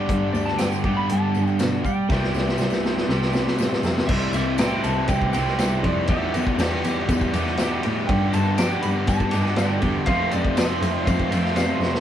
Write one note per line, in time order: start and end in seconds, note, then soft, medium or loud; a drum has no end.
0.00 0.82 G2 medium
0.00 0.83 D3 medium
0.00 0.86 G3 medium
0.00 0.83 B3 medium
0.00 0.83 D4 medium
0.00 0.84 G4 loud
0.00 0.32 D5 loud
0.09 0.29 G2 medium
0.09 kick loud
0.09 closed hi-hat medium
0.33 0.54 D2 medium
0.33 0.45 D5 medium
0.33 tambourine medium
0.46 0.58 A5 loud
0.46 snare soft
0.46 tambourine soft
0.58 0.79 G2 medium
0.58 0.97 G5 loud
0.58 snare loud
0.58 closed hi-hat medium
0.58 tambourine medium
0.72 tambourine medium
0.84 1.04 G2 medium
0.84 1.84 G2 medium
0.84 1.84 D3 medium
0.84 2.09 G3 medium
0.84 1.83 B3 medium
0.84 1.83 D4 medium
0.84 2.12 G4 medium
0.84 kick medium
0.97 1.10 B5 medium
1.09 1.30 G2 medium
1.09 1.57 A5 medium
1.09 closed hi-hat medium
1.34 1.55 G2 medium
1.34 tambourine medium
1.47 tambourine soft
1.59 2.00 B2 medium
1.59 snare loud
1.59 closed hi-hat medium
1.59 tambourine medium
1.85 3.56 G5 loud
1.85 kick medium
1.85 tambourine medium
2.09 2.29 C2 loud
2.09 3.08 C3 medium
2.09 3.08 E3 loud
2.09 3.09 G3 medium
2.09 3.09 E4 loud
2.09 3.09 G4 loud
2.09 kick loud
2.09 snare medium
2.09 tambourine soft
2.23 snare medium
2.34 2.55 C2 medium
2.34 snare medium
2.34 tambourine medium
2.48 snare medium
2.48 tambourine soft
2.58 2.99 C2 medium
2.58 snare medium
2.58 tambourine medium
2.70 snare medium
2.70 tambourine medium
2.83 snare medium
2.83 tambourine soft
2.97 snare medium
3.09 3.29 C2 loud
3.09 4.07 C3 medium
3.09 4.08 E3 medium
3.09 4.08 G3 medium
3.09 4.09 E4 medium
3.09 4.09 G4 medium
3.09 snare medium
3.22 snare medium
3.33 3.55 C3 medium
3.33 snare medium
3.33 tambourine medium
3.47 snare medium
3.58 3.79 A2 medium
3.58 snare medium
3.58 tambourine loud
3.73 snare medium
3.83 4.04 F2 medium
3.83 snare loud
3.83 tambourine medium
3.97 snare medium
3.97 tambourine soft
4.07 4.30 C2 medium
4.07 4.59 C3 loud
4.07 4.59 E3 medium
4.07 4.35 G3 loud
4.07 4.33 C4 loud
4.07 4.32 E5 loud
4.07 kick loud
4.07 crash loud
4.11 4.32 E4 loud
4.33 4.55 C2 medium
4.33 4.59 G3 medium
4.33 4.60 C4 medium
4.33 4.62 E4 medium
4.33 4.59 E5 loud
4.33 ride medium
4.33 tambourine medium
4.58 4.80 A2 loud
4.58 5.58 E3 medium
4.58 5.36 G3 medium
4.58 5.34 C4 medium
4.58 5.33 E4 medium
4.58 4.82 G5 loud
4.58 snare loud
4.58 ride loud
4.58 tambourine loud
4.84 5.06 C2 medium
4.84 5.09 A5 loud
4.84 ride medium
4.84 tambourine medium
5.08 5.30 C2 loud
5.08 5.32 G5 loud
5.08 kick loud
5.08 ride loud
5.08 tambourine medium
5.22 kick medium
5.33 5.56 C2 medium
5.33 5.59 G3 medium
5.33 5.59 C4 medium
5.33 5.60 E4 medium
5.33 5.85 G5 loud
5.33 ride medium
5.33 tambourine medium
5.47 snare soft
5.58 5.81 C2 medium
5.58 6.07 C3 loud
5.58 6.07 E3 loud
5.58 5.86 G3 loud
5.58 5.84 C4 loud
5.58 5.83 E4 loud
5.58 snare medium
5.58 ride medium
5.58 tambourine loud
5.83 6.05 F2 loud
5.83 6.09 G3 medium
5.83 6.08 C4 medium
5.83 6.07 E4 medium
5.83 6.09 D5 medium
5.83 kick medium
5.83 ride medium
6.07 6.58 E2 medium
6.07 6.30 E2 loud
6.07 6.58 B2 loud
6.07 6.35 E3 loud
6.07 6.35 G3 loud
6.07 6.34 B3 loud
6.07 6.33 G4 loud
6.07 7.55 E5 loud
6.07 kick loud
6.07 ride loud
6.34 6.56 E2 medium
6.34 6.57 E3 medium
6.34 6.59 G3 medium
6.34 6.60 B3 medium
6.34 6.60 G4 medium
6.34 ride medium
6.34 tambourine medium
6.47 kick medium
6.58 6.80 E2 loud
6.58 7.34 E3 medium
6.58 7.34 G3 medium
6.58 7.33 B3 medium
6.58 7.31 G4 medium
6.58 snare loud
6.58 ride loud
6.58 tambourine medium
6.84 7.05 E2 medium
6.84 ride medium
6.84 tambourine medium
7.09 7.30 E2 loud
7.09 kick loud
7.09 ride loud
7.09 tambourine medium
7.21 kick medium
7.32 7.54 E2 medium
7.32 7.58 E3 medium
7.32 7.59 G3 medium
7.32 7.59 B3 medium
7.32 7.60 G4 medium
7.32 ride medium
7.32 tambourine medium
7.46 snare soft
7.57 7.79 E2 medium
7.57 8.07 E2 medium
7.57 8.07 B2 medium
7.57 7.84 E3 loud
7.57 7.84 G3 loud
7.57 7.83 B3 loud
7.57 snare loud
7.57 ride medium
7.57 tambourine loud
7.61 7.82 G4 loud
7.83 8.05 A2 medium
7.83 8.08 E3 medium
7.83 8.07 G3 medium
7.83 8.07 B3 medium
7.83 8.07 G4 medium
7.83 ride medium
8.07 8.58 G2 medium
8.07 8.30 G2 loud
8.07 8.58 D3 loud
8.07 8.35 G3 loud
8.07 8.34 B3 loud
8.07 8.33 D4 loud
8.07 8.32 G4 loud
8.07 8.33 G5 loud
8.07 kick loud
8.07 ride loud
8.33 8.55 G2 loud
8.33 8.56 G3 medium
8.33 8.57 B3 medium
8.33 8.58 D4 medium
8.33 8.59 G4 medium
8.33 8.59 A5 loud
8.33 ride medium
8.33 tambourine medium
8.58 8.79 F3 medium
8.58 9.34 G3 medium
8.58 9.33 B3 medium
8.58 9.32 D4 medium
8.58 9.31 G4 medium
8.58 8.81 G5 loud
8.58 snare loud
8.58 ride loud
8.58 tambourine loud
8.82 9.05 G2 loud
8.82 8.89 B5 loud
8.82 ride medium
8.82 tambourine medium
9.07 9.29 G2 loud
9.07 9.59 A5 loud
9.07 kick loud
9.07 ride loud
9.07 tambourine medium
9.20 kick medium
9.31 9.54 G2 loud
9.31 9.57 G3 medium
9.31 9.57 B3 medium
9.31 9.58 D4 medium
9.31 9.58 G4 medium
9.31 ride medium
9.31 tambourine medium
9.45 snare soft
9.56 10.05 G2 loud
9.56 9.78 G2 medium
9.56 10.05 D3 loud
9.56 9.82 G3 loud
9.56 9.81 B3 loud
9.56 9.80 D4 loud
9.56 9.80 G4 loud
9.56 10.06 G5 medium
9.56 snare loud
9.56 ride medium
9.56 tambourine medium
9.81 10.03 E2 medium
9.81 10.06 G3 medium
9.81 10.06 B3 medium
9.81 10.05 D4 medium
9.81 10.05 G4 medium
9.81 kick medium
9.81 ride medium
10.06 10.57 F2 loud
10.06 10.28 F2 loud
10.06 10.57 C3 loud
10.06 10.32 F3 loud
10.06 10.31 A3 loud
10.06 10.31 C4 medium
10.06 10.29 F4 loud
10.06 10.32 F5 loud
10.06 kick loud
10.06 ride loud
10.06 tambourine soft
10.30 10.54 F2 medium
10.30 10.55 F3 medium
10.30 10.56 A3 medium
10.30 10.58 C4 medium
10.30 10.57 F4 medium
10.30 10.55 D5 medium
10.30 ride medium
10.30 tambourine medium
10.45 kick medium
10.56 10.78 F2 medium
10.56 11.33 F3 medium
10.56 11.31 A3 medium
10.56 11.30 C4 medium
10.56 11.29 F4 medium
10.56 11.05 E5 medium
10.56 snare loud
10.56 ride loud
10.56 tambourine medium
10.81 11.03 F2 medium
10.81 ride medium
10.81 tambourine medium
11.06 11.28 F2 loud
11.06 11.55 F5 medium
11.06 kick loud
11.06 ride loud
11.06 tambourine medium
11.20 kick medium
11.31 11.53 F2 medium
11.31 11.56 F3 medium
11.31 11.56 A3 medium
11.31 11.57 C4 medium
11.31 11.57 F4 medium
11.31 ride medium
11.31 tambourine medium
11.45 snare soft
11.55 12.00 F2 loud
11.55 11.77 F2 medium
11.55 12.00 C3 loud
11.55 11.82 F3 loud
11.55 11.81 A3 loud
11.55 11.80 C4 loud
11.55 11.79 F4 loud
11.55 11.91 F5 medium
11.55 snare medium
11.55 ride medium
11.55 tambourine medium
11.79 12.00 F2 loud
11.79 12.00 A3 medium
11.79 12.00 C4 medium
11.79 12.00 F4 medium
11.79 snare medium
11.79 tambourine soft
11.83 12.00 F3 medium
11.95 snare loud